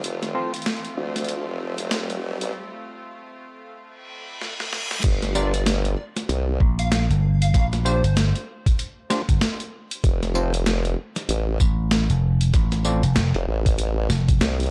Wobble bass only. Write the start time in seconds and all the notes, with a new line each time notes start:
0.04 F1
0.97 D2
1.47 F1
1.78 F1
2.41 A1
5.04 G1
6.29 C2
10.04 F1
11.29 A1
13.35 F1
13.47 A1
14.41 C2